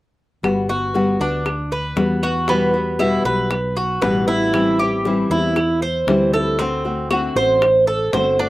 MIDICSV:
0, 0, Header, 1, 6, 480
1, 0, Start_track
1, 0, Key_signature, 1, "major"
1, 0, Tempo, 512821
1, 411, Time_signature, 4, 2, 24, 8
1, 7947, End_track
2, 0, Start_track
2, 0, Title_t, "Cuban tres"
2, 0, Program_c, 0, 25
2, 649, Note_on_c, 0, 66, 62
2, 1114, Note_off_c, 0, 66, 0
2, 1131, Note_on_c, 0, 62, 68
2, 1594, Note_off_c, 0, 62, 0
2, 1610, Note_on_c, 0, 71, 61
2, 2074, Note_off_c, 0, 71, 0
2, 2089, Note_on_c, 0, 66, 74
2, 2320, Note_off_c, 0, 66, 0
2, 2329, Note_on_c, 0, 59, 73
2, 2793, Note_off_c, 0, 59, 0
2, 2806, Note_on_c, 0, 64, 67
2, 3038, Note_off_c, 0, 64, 0
2, 3045, Note_on_c, 0, 71, 73
2, 3510, Note_off_c, 0, 71, 0
2, 3525, Note_on_c, 0, 66, 60
2, 3758, Note_off_c, 0, 66, 0
2, 3759, Note_on_c, 0, 71, 60
2, 3995, Note_off_c, 0, 71, 0
2, 4003, Note_on_c, 0, 64, 73
2, 4470, Note_off_c, 0, 64, 0
2, 4487, Note_on_c, 0, 67, 61
2, 4952, Note_off_c, 0, 67, 0
2, 4969, Note_on_c, 0, 64, 73
2, 5434, Note_off_c, 0, 64, 0
2, 5449, Note_on_c, 0, 72, 64
2, 5914, Note_off_c, 0, 72, 0
2, 5929, Note_on_c, 0, 69, 72
2, 6161, Note_off_c, 0, 69, 0
2, 6170, Note_on_c, 0, 60, 72
2, 6635, Note_off_c, 0, 60, 0
2, 6650, Note_on_c, 0, 66, 66
2, 6883, Note_off_c, 0, 66, 0
2, 6893, Note_on_c, 0, 72, 75
2, 7358, Note_off_c, 0, 72, 0
2, 7369, Note_on_c, 0, 69, 69
2, 7603, Note_off_c, 0, 69, 0
2, 7615, Note_on_c, 0, 72, 60
2, 7846, Note_off_c, 0, 72, 0
2, 7856, Note_on_c, 0, 62, 72
2, 7947, Note_off_c, 0, 62, 0
2, 7947, End_track
3, 0, Start_track
3, 0, Title_t, "Nylon-string guitar"
3, 0, Program_c, 1, 24
3, 404, Note_on_c, 1, 55, 66
3, 414, Note_on_c, 1, 59, 69
3, 416, Note_on_c, 1, 66, 68
3, 635, Note_off_c, 1, 66, 0
3, 637, Note_off_c, 1, 55, 0
3, 642, Note_off_c, 1, 59, 0
3, 646, Note_on_c, 1, 66, 42
3, 658, Note_on_c, 1, 59, 36
3, 876, Note_off_c, 1, 59, 0
3, 878, Note_off_c, 1, 66, 0
3, 882, Note_on_c, 1, 55, 73
3, 887, Note_on_c, 1, 59, 76
3, 896, Note_on_c, 1, 66, 78
3, 1107, Note_off_c, 1, 66, 0
3, 1115, Note_off_c, 1, 55, 0
3, 1118, Note_off_c, 1, 59, 0
3, 1118, Note_on_c, 1, 66, 51
3, 1133, Note_on_c, 1, 59, 40
3, 1353, Note_off_c, 1, 66, 0
3, 1354, Note_off_c, 1, 59, 0
3, 1835, Note_on_c, 1, 55, 67
3, 1846, Note_on_c, 1, 59, 81
3, 1851, Note_on_c, 1, 66, 66
3, 2071, Note_off_c, 1, 55, 0
3, 2072, Note_off_c, 1, 66, 0
3, 2076, Note_off_c, 1, 59, 0
3, 2083, Note_on_c, 1, 66, 46
3, 2095, Note_on_c, 1, 59, 37
3, 2315, Note_off_c, 1, 66, 0
3, 2321, Note_off_c, 1, 59, 0
3, 2321, Note_on_c, 1, 47, 63
3, 2327, Note_on_c, 1, 52, 69
3, 2331, Note_on_c, 1, 59, 65
3, 2332, Note_on_c, 1, 55, 67
3, 2336, Note_on_c, 1, 66, 66
3, 2552, Note_off_c, 1, 66, 0
3, 2554, Note_off_c, 1, 47, 0
3, 2557, Note_off_c, 1, 52, 0
3, 2559, Note_off_c, 1, 55, 0
3, 2559, Note_off_c, 1, 59, 0
3, 2563, Note_on_c, 1, 66, 43
3, 2570, Note_on_c, 1, 59, 42
3, 2575, Note_on_c, 1, 55, 34
3, 2795, Note_off_c, 1, 66, 0
3, 2798, Note_off_c, 1, 59, 0
3, 2801, Note_off_c, 1, 55, 0
3, 2804, Note_on_c, 1, 47, 73
3, 2807, Note_on_c, 1, 52, 66
3, 2811, Note_on_c, 1, 55, 73
3, 2816, Note_on_c, 1, 59, 78
3, 2816, Note_on_c, 1, 66, 72
3, 3034, Note_off_c, 1, 66, 0
3, 3035, Note_off_c, 1, 47, 0
3, 3037, Note_off_c, 1, 52, 0
3, 3039, Note_off_c, 1, 55, 0
3, 3041, Note_off_c, 1, 59, 0
3, 3045, Note_on_c, 1, 66, 44
3, 3051, Note_on_c, 1, 59, 44
3, 3057, Note_on_c, 1, 55, 38
3, 3275, Note_off_c, 1, 55, 0
3, 3276, Note_off_c, 1, 66, 0
3, 3279, Note_off_c, 1, 59, 0
3, 3767, Note_on_c, 1, 47, 70
3, 3769, Note_on_c, 1, 52, 67
3, 3776, Note_on_c, 1, 55, 67
3, 3780, Note_on_c, 1, 59, 66
3, 3781, Note_on_c, 1, 66, 77
3, 3997, Note_off_c, 1, 47, 0
3, 3998, Note_off_c, 1, 52, 0
3, 3998, Note_off_c, 1, 66, 0
3, 4001, Note_off_c, 1, 55, 0
3, 4003, Note_off_c, 1, 59, 0
3, 4010, Note_on_c, 1, 66, 42
3, 4013, Note_on_c, 1, 59, 43
3, 4019, Note_on_c, 1, 55, 39
3, 4238, Note_off_c, 1, 66, 0
3, 4240, Note_off_c, 1, 59, 0
3, 4243, Note_off_c, 1, 55, 0
3, 4248, Note_on_c, 1, 52, 60
3, 4255, Note_on_c, 1, 55, 62
3, 4258, Note_on_c, 1, 60, 70
3, 4261, Note_on_c, 1, 64, 79
3, 4477, Note_off_c, 1, 52, 0
3, 4479, Note_off_c, 1, 64, 0
3, 4481, Note_off_c, 1, 55, 0
3, 4482, Note_off_c, 1, 60, 0
3, 4490, Note_on_c, 1, 64, 45
3, 4497, Note_on_c, 1, 60, 42
3, 4504, Note_on_c, 1, 55, 36
3, 4719, Note_off_c, 1, 64, 0
3, 4722, Note_off_c, 1, 60, 0
3, 4725, Note_off_c, 1, 55, 0
3, 4733, Note_on_c, 1, 52, 73
3, 4740, Note_on_c, 1, 55, 78
3, 4744, Note_on_c, 1, 60, 72
3, 4746, Note_on_c, 1, 64, 75
3, 4958, Note_off_c, 1, 64, 0
3, 4960, Note_off_c, 1, 52, 0
3, 4963, Note_off_c, 1, 55, 0
3, 4963, Note_off_c, 1, 60, 0
3, 4970, Note_on_c, 1, 64, 50
3, 4974, Note_on_c, 1, 60, 41
3, 4982, Note_on_c, 1, 55, 42
3, 5198, Note_off_c, 1, 55, 0
3, 5198, Note_off_c, 1, 64, 0
3, 5201, Note_off_c, 1, 60, 0
3, 5688, Note_on_c, 1, 52, 62
3, 5693, Note_on_c, 1, 55, 70
3, 5699, Note_on_c, 1, 60, 70
3, 5703, Note_on_c, 1, 64, 69
3, 5918, Note_off_c, 1, 52, 0
3, 5921, Note_off_c, 1, 55, 0
3, 5924, Note_off_c, 1, 60, 0
3, 5924, Note_off_c, 1, 64, 0
3, 5935, Note_on_c, 1, 64, 46
3, 5940, Note_on_c, 1, 60, 45
3, 5947, Note_on_c, 1, 55, 38
3, 6162, Note_off_c, 1, 64, 0
3, 6165, Note_off_c, 1, 60, 0
3, 6168, Note_off_c, 1, 55, 0
3, 6175, Note_on_c, 1, 50, 57
3, 6181, Note_on_c, 1, 57, 74
3, 6185, Note_on_c, 1, 60, 69
3, 6191, Note_on_c, 1, 66, 67
3, 6402, Note_off_c, 1, 50, 0
3, 6404, Note_off_c, 1, 66, 0
3, 6405, Note_off_c, 1, 57, 0
3, 6407, Note_off_c, 1, 60, 0
3, 6415, Note_on_c, 1, 66, 45
3, 6421, Note_on_c, 1, 60, 41
3, 6429, Note_on_c, 1, 57, 35
3, 6642, Note_off_c, 1, 66, 0
3, 6645, Note_off_c, 1, 60, 0
3, 6649, Note_off_c, 1, 57, 0
3, 6655, Note_on_c, 1, 50, 64
3, 6665, Note_on_c, 1, 57, 74
3, 6667, Note_on_c, 1, 60, 74
3, 6670, Note_on_c, 1, 66, 74
3, 6883, Note_off_c, 1, 50, 0
3, 6888, Note_off_c, 1, 57, 0
3, 6888, Note_off_c, 1, 60, 0
3, 6890, Note_off_c, 1, 66, 0
3, 6899, Note_on_c, 1, 66, 51
3, 6906, Note_on_c, 1, 60, 39
3, 6913, Note_on_c, 1, 57, 39
3, 7125, Note_off_c, 1, 66, 0
3, 7127, Note_off_c, 1, 57, 0
3, 7128, Note_off_c, 1, 60, 0
3, 7608, Note_on_c, 1, 50, 65
3, 7612, Note_on_c, 1, 57, 65
3, 7617, Note_on_c, 1, 60, 73
3, 7622, Note_on_c, 1, 66, 75
3, 7840, Note_off_c, 1, 50, 0
3, 7842, Note_off_c, 1, 57, 0
3, 7842, Note_off_c, 1, 66, 0
3, 7844, Note_off_c, 1, 60, 0
3, 7854, Note_on_c, 1, 66, 50
3, 7862, Note_on_c, 1, 60, 37
3, 7865, Note_on_c, 1, 57, 42
3, 7947, Note_off_c, 1, 57, 0
3, 7947, Note_off_c, 1, 60, 0
3, 7947, Note_off_c, 1, 66, 0
3, 7947, End_track
4, 0, Start_track
4, 0, Title_t, "Fretless electric bass"
4, 0, Program_c, 2, 35
4, 406, Note_on_c, 2, 31, 92
4, 1089, Note_off_c, 2, 31, 0
4, 1122, Note_on_c, 2, 38, 75
4, 1807, Note_off_c, 2, 38, 0
4, 1839, Note_on_c, 2, 40, 76
4, 2980, Note_off_c, 2, 40, 0
4, 3042, Note_on_c, 2, 35, 81
4, 3726, Note_off_c, 2, 35, 0
4, 3761, Note_on_c, 2, 33, 81
4, 4902, Note_off_c, 2, 33, 0
4, 4961, Note_on_c, 2, 40, 79
4, 5647, Note_off_c, 2, 40, 0
4, 5681, Note_on_c, 2, 38, 76
4, 6824, Note_off_c, 2, 38, 0
4, 6884, Note_on_c, 2, 33, 85
4, 7570, Note_off_c, 2, 33, 0
4, 7609, Note_on_c, 2, 31, 83
4, 7947, Note_off_c, 2, 31, 0
4, 7947, End_track
5, 0, Start_track
5, 0, Title_t, "Muted nylon-string guitar strokes"
5, 1361, Note_on_c, 9, 29, 50
5, 1455, Note_off_c, 9, 29, 0
5, 3283, Note_on_c, 9, 29, 54
5, 3377, Note_off_c, 9, 29, 0
5, 5209, Note_on_c, 9, 29, 55
5, 5303, Note_off_c, 9, 29, 0
5, 7135, Note_on_c, 9, 29, 48
5, 7228, Note_off_c, 9, 29, 0
5, 7947, End_track
6, 0, Start_track
6, 0, Title_t, "Drums"
6, 413, Note_on_c, 9, 60, 65
6, 415, Note_on_c, 9, 75, 62
6, 507, Note_off_c, 9, 60, 0
6, 508, Note_off_c, 9, 75, 0
6, 655, Note_on_c, 9, 60, 31
6, 749, Note_off_c, 9, 60, 0
6, 893, Note_on_c, 9, 60, 55
6, 987, Note_off_c, 9, 60, 0
6, 1131, Note_on_c, 9, 60, 27
6, 1225, Note_off_c, 9, 60, 0
6, 1365, Note_on_c, 9, 60, 57
6, 1369, Note_on_c, 9, 75, 64
6, 1458, Note_off_c, 9, 60, 0
6, 1462, Note_off_c, 9, 75, 0
6, 1606, Note_on_c, 9, 60, 30
6, 1700, Note_off_c, 9, 60, 0
6, 1842, Note_on_c, 9, 60, 62
6, 1842, Note_on_c, 9, 61, 83
6, 1936, Note_off_c, 9, 60, 0
6, 1936, Note_off_c, 9, 61, 0
6, 2085, Note_on_c, 9, 75, 59
6, 2179, Note_off_c, 9, 75, 0
6, 2321, Note_on_c, 9, 60, 58
6, 2414, Note_off_c, 9, 60, 0
6, 2563, Note_on_c, 9, 60, 30
6, 2657, Note_off_c, 9, 60, 0
6, 2800, Note_on_c, 9, 60, 56
6, 2803, Note_on_c, 9, 75, 63
6, 2894, Note_off_c, 9, 60, 0
6, 2896, Note_off_c, 9, 75, 0
6, 3039, Note_on_c, 9, 60, 32
6, 3133, Note_off_c, 9, 60, 0
6, 3282, Note_on_c, 9, 60, 63
6, 3288, Note_on_c, 9, 75, 64
6, 3376, Note_off_c, 9, 60, 0
6, 3382, Note_off_c, 9, 75, 0
6, 3527, Note_on_c, 9, 60, 31
6, 3620, Note_off_c, 9, 60, 0
6, 3765, Note_on_c, 9, 60, 68
6, 3765, Note_on_c, 9, 61, 81
6, 3859, Note_off_c, 9, 60, 0
6, 3859, Note_off_c, 9, 61, 0
6, 4248, Note_on_c, 9, 60, 60
6, 4250, Note_on_c, 9, 75, 59
6, 4341, Note_off_c, 9, 60, 0
6, 4343, Note_off_c, 9, 75, 0
6, 4490, Note_on_c, 9, 60, 29
6, 4583, Note_off_c, 9, 60, 0
6, 4729, Note_on_c, 9, 60, 58
6, 4822, Note_off_c, 9, 60, 0
6, 4970, Note_on_c, 9, 60, 31
6, 5063, Note_off_c, 9, 60, 0
6, 5206, Note_on_c, 9, 60, 56
6, 5210, Note_on_c, 9, 75, 68
6, 5300, Note_off_c, 9, 60, 0
6, 5304, Note_off_c, 9, 75, 0
6, 5450, Note_on_c, 9, 60, 30
6, 5544, Note_off_c, 9, 60, 0
6, 5690, Note_on_c, 9, 60, 67
6, 5690, Note_on_c, 9, 61, 80
6, 5784, Note_off_c, 9, 60, 0
6, 5784, Note_off_c, 9, 61, 0
6, 5933, Note_on_c, 9, 75, 63
6, 6026, Note_off_c, 9, 75, 0
6, 6166, Note_on_c, 9, 60, 60
6, 6260, Note_off_c, 9, 60, 0
6, 6411, Note_on_c, 9, 60, 33
6, 6504, Note_off_c, 9, 60, 0
6, 6651, Note_on_c, 9, 60, 59
6, 6652, Note_on_c, 9, 75, 68
6, 6745, Note_off_c, 9, 60, 0
6, 6745, Note_off_c, 9, 75, 0
6, 6892, Note_on_c, 9, 60, 29
6, 6986, Note_off_c, 9, 60, 0
6, 7132, Note_on_c, 9, 60, 60
6, 7132, Note_on_c, 9, 75, 60
6, 7226, Note_off_c, 9, 60, 0
6, 7226, Note_off_c, 9, 75, 0
6, 7375, Note_on_c, 9, 60, 31
6, 7468, Note_off_c, 9, 60, 0
6, 7612, Note_on_c, 9, 60, 65
6, 7612, Note_on_c, 9, 61, 74
6, 7705, Note_off_c, 9, 60, 0
6, 7705, Note_off_c, 9, 61, 0
6, 7947, End_track
0, 0, End_of_file